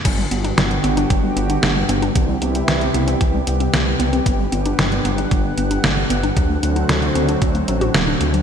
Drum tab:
CC |x---------------|----------------|----------------|----------------|
HH |x-xxxxxxx-xxx-xx|x-xxxxxxx-xxx-xx|x-xxxxxxx-xxx-xx|x-xxxxxxxxxxx-xx|
SD |----o-------o---|----o-------o---|----o-------o---|----o-------o---|
BD |o-------o-------|o-------o-------|o-------o-------|o-------o-------|